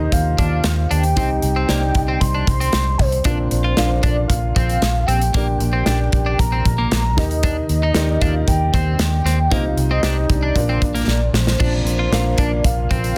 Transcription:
Already playing: upright piano D#3 D#4 G4 A#4 C5 G5, soft synth lead D#5
0.12 fingered electric bass D#2, soft synth lead F5, kick, closed hi-hat
0.38 fingered electric bass D#2, clean electric guitar D4, kick, closed hi-hat
0.64 fingered electric bass D#2, snare, closed hi-hat
0.91 fingered electric bass D#2, clean electric guitar D4, soft synth lead G5, closed hi-hat
1.03 closed hi-hat
1.16 upright piano C3 D#4 G4 C5 D#5, clean electric guitar C4, kick, closed hi-hat
1.42 fingered electric bass C2, soft synth lead G5, closed hi-hat
1.56 clean electric guitar C4
1.68 fingered electric bass C2, clean electric guitar A#3, upright piano D#4 G4 C5 D5, snare, closed hi-hat
1.95 fingered electric bass C2, kick, closed hi-hat
2.08 clean electric guitar C4
2.20 fingered electric bass C2, soft synth lead C6, kick, closed hi-hat
2.35 clean electric guitar D4
2.47 fingered electric bass C2, kick, closed hi-hat
2.60 clean electric guitar C4, closed hi-hat
2.73 fingered electric bass C2, snare, closed hi-hat
2.98 fingered electric bass C2, soft synth lead C5, kick, open hi-hat
3.12 closed hi-hat
3.24 upright piano A#2 D4 F4 A#4 D5, clean electric guitar D4, kick, closed hi-hat
3.51 fingered electric bass A#1, closed hi-hat
3.64 clean electric guitar F4
3.77 fingered electric bass A#1, upright piano D4 F4 A#4 F5, snare, closed hi-hat
4.03 fingered electric bass A#1, clean electric guitar D4, soft synth lead D5, kick, closed hi-hat
4.28 fingered electric bass A#1, soft synth lead F5, kick, closed hi-hat
4.56 fingered electric bass A#1, clean electric guitar C4, kick, closed hi-hat
4.70 closed hi-hat
4.82 fingered electric bass A#1, snare, closed hi-hat
5.07 fingered electric bass A#1, clean electric guitar C4, soft synth lead G5, closed hi-hat
5.21 closed hi-hat
5.34 fingered electric bass A#1, upright piano A#2 D4 G4 A#4 D5, clean electric guitar A#3, kick, closed hi-hat
5.58 fingered electric bass A#1, soft synth lead G5, closed hi-hat
5.73 clean electric guitar C4
5.86 fingered electric bass A#1, clean electric guitar D4, upright piano D4 G4 A#4 D5, snare, closed hi-hat
6.12 fingered electric bass A#1, kick, closed hi-hat
6.26 clean electric guitar D4
6.39 fingered electric bass A#1, soft synth lead A#5, kick, closed hi-hat
6.52 clean electric guitar C4
6.65 fingered electric bass A#1, kick, closed hi-hat
6.78 clean electric guitar A#3
6.92 fingered electric bass A#1, snare, closed hi-hat
7.17 fingered electric bass D#2, upright piano D#3 D#4 G4 A#4 D#5, soft synth lead D#5, kick, snare, closed hi-hat
7.31 closed hi-hat
7.43 clean electric guitar D4, kick, closed hi-hat
7.69 fingered electric bass D#2, closed hi-hat
7.83 clean electric guitar D#4
7.94 fingered electric bass D#2, upright piano D#4 G4 A#4 D5, snare, closed hi-hat
8.21 fingered electric bass D#2, clean electric guitar D4, soft synth lead F5, kick, closed hi-hat
8.47 fingered electric bass D#2, soft synth lead G5, kick, closed hi-hat
8.74 fingered electric bass D#2, clean electric guitar C4, kick, closed hi-hat
8.99 fingered electric bass D#2, soft synth lead G5, snare, closed hi-hat
9.25 fingered electric bass D#2, clean electric guitar C4, snare, closed hi-hat
9.51 upright piano C3 D#4 G4 C5 D#5, clean electric guitar A#3, soft synth lead F5, kick, closed hi-hat
9.77 fingered electric bass C2, closed hi-hat
9.91 clean electric guitar C4, soft synth lead D#5
10.03 fingered electric bass C2, clean electric guitar D4, upright piano D#4 G4 C5 D#5, snare, closed hi-hat
10.29 fingered electric bass C2, soft synth lead D5, kick, closed hi-hat
10.43 clean electric guitar D4
10.55 fingered electric bass A#1, upright piano A#2 D4 F4 A#4 D5, kick, closed hi-hat
10.69 clean electric guitar C4
10.82 fingered electric bass A#1, kick, closed hi-hat
10.95 clean electric guitar A#3, closed hi-hat
11.07 fingered electric bass A#1, snare
11.33 fingered electric bass A#1, soft synth lead C5, snare
11.47 snare
11.59 fingered electric bass A#1, upright piano A#2 A#3 D4 F4 A#4 D5, clean electric guitar D4, kick, crash
11.85 fingered electric bass A#1, closed hi-hat
11.99 clean electric guitar F4
12.12 fingered electric bass A#1, upright piano A#3 D4 F4 A#4 F5, snare, closed hi-hat
12.38 fingered electric bass A#1, clean electric guitar D4, soft synth lead D5, kick, closed hi-hat
12.64 fingered electric bass A#1, soft synth lead F5, kick, closed hi-hat
12.90 fingered electric bass A#1, clean electric guitar C4, kick, closed hi-hat
13.04 closed hi-hat

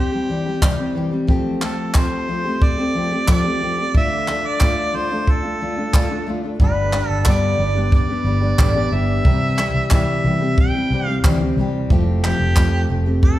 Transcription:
Already playing: steel-string acoustic guitar G3 C4 G4, harmonica G4
0.12 steel-string acoustic guitar G3 C4 G4
0.29 steel-string acoustic guitar E3 G3 C4 G4
0.46 steel-string acoustic guitar G3 C4 G4
0.62 steel-string acoustic guitar C3 E3 G3 C4 G4, kick, clap
0.78 steel-string acoustic guitar G3 C4 G4
0.95 steel-string acoustic guitar E3 G3 C4 G4
1.11 steel-string acoustic guitar G3 C4 G4
1.27 steel-string acoustic guitar F3 A3 C4 G4, kick
1.62 steel-string acoustic guitar F3 A3 C4 G4, harmonica A4, clap
1.94 steel-string acoustic guitar F3 A3 C4 G4, harmonica C5, kick, clap
2.28 steel-string acoustic guitar F3 A3 C4 G4
2.45 steel-string acoustic guitar A3 C4 G4
2.62 harmonica D5, kick
2.78 steel-string acoustic guitar A3 C4 G4
2.95 steel-string acoustic guitar F3 A3 C4 G4
3.11 steel-string acoustic guitar A3 C4 G4
3.27 steel-string acoustic guitar F3 A3 C4 G4, kick, clap
3.32 harmonica D5
3.44 steel-string acoustic guitar A3 C4 G4
3.61 steel-string acoustic guitar F3 A3 C4 G4
3.78 steel-string acoustic guitar A3 C4 G4
3.94 steel-string acoustic guitar D3 A3 D4 F4, harmonica E5, kick
4.28 steel-string acoustic guitar D3 A3 D4 F4, clap
4.47 harmonica D5
4.60 steel-string acoustic guitar D3 A3 D4 F4, kick, clap
4.93 steel-string acoustic guitar D3 A3 D4 F4, harmonica C5
5.10 steel-string acoustic guitar A3 D4 F4
5.27 harmonica A4, kick
5.43 steel-string acoustic guitar A3 D4 F4
5.60 steel-string acoustic guitar D3 A3 D4 F4
5.76 steel-string acoustic guitar A3 D4 F4
5.93 steel-string acoustic guitar D3 A3 D4 F4, kick, clap
6.10 steel-string acoustic guitar A3 D4 F4
6.27 steel-string acoustic guitar D3 A3 D4 F4
6.43 steel-string acoustic guitar A3 D4 F4
6.59 fingered electric bass G1, steel-string acoustic guitar G2 D3 G3 B3 D4 G4, kick
6.64 harmonica B4
6.92 steel-string acoustic guitar G3 B3 D4 G4, clap
7.09 fingered electric bass G1, harmonica A4
7.25 steel-string acoustic guitar G2 D3 G3 B3 D4 G4, fingered electric bass G2, kick, clap
7.30 harmonica D5
7.59 fingered electric bass G1, steel-string acoustic guitar G3 B3 D4 G4
7.75 steel-string acoustic guitar G3 B3 D4 G4
7.92 harmonica D5, kick
8.10 steel-string acoustic guitar G3 B3 D4 G4
8.24 fingered electric bass G1, steel-string acoustic guitar G3 B3 D4 G4
8.41 steel-string acoustic guitar G3 B3 D4 G4
8.59 fingered electric bass A1, steel-string acoustic guitar G2 D3 G3 B3 D4 G4, kick, clap
8.75 steel-string acoustic guitar G3 B3 D4 G4
8.91 fingered electric bass G1, steel-string acoustic guitar G3 B3 D4 G4, harmonica E5
9.25 fingered electric bass C2, steel-string acoustic guitar C3 E3 G3 C4 G4, kick
9.58 steel-string acoustic guitar E3 G3 C4 G4, clap
9.74 fingered electric bass C2
9.90 fingered electric bass C3, steel-string acoustic guitar C3 E3 G3 C4 G4, harmonica E5, kick, clap
10.24 fingered electric bass C2, steel-string acoustic guitar E3 G3 C4 G4
10.41 steel-string acoustic guitar G3 C4 G4
10.58 harmonica G5, kick
10.75 steel-string acoustic guitar G3 C4 G4
10.90 fingered electric bass C2, steel-string acoustic guitar E3 G3 C4 G4
11.06 steel-string acoustic guitar G3 C4 G4, harmonica F5
11.24 fingered electric bass D2, steel-string acoustic guitar C3 E3 G3 C4 G4, kick, clap
11.41 steel-string acoustic guitar G3 C4 G4
11.57 fingered electric bass C2, steel-string acoustic guitar E3 G3 C4
11.61 steel-string acoustic guitar G4
11.90 fingered electric bass F1, steel-string acoustic guitar F3 A3 C4 G4, kick
12.24 steel-string acoustic guitar F3 A3 C4 G4, harmonica G4, clap
12.39 fingered electric bass F1
12.56 fingered electric bass F2, steel-string acoustic guitar F3 A3 C4 G4, kick, clap
12.89 fingered electric bass F1, steel-string acoustic guitar F3 A3 C4 G4
13.06 steel-string acoustic guitar A3 C4 G4
13.23 harmonica A4, kick

